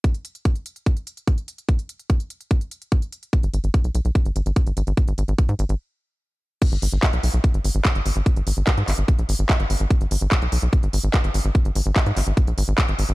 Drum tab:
CC |----------------|----------------|----------------|----------------|
HH |xxxxxxxxxxxxxxxx|xxxxxxxxxxxxxxxx|xxxxxxxxxxxxxxxx|xxxxxxxx--------|
CP |----------------|----------------|----------------|----------------|
BD |o---o---o---o---|o---o---o---o---|o---o---o---o---|o---o-----------|

CC |x---------------|----------------|----------------|----------------|
HH |xxoxxxoxxxoxxxox|xxoxxxoxxxoxxxo-|xxoxxxoxxxoxxxox|xxoxxxoxxxoxxxox|
CP |----x-------x---|----x-x-----x---|----x-------x---|----x-x-----x---|
BD |o---o---o---o---|o---o---o---o---|o---o---o---o---|o---o---o---o---|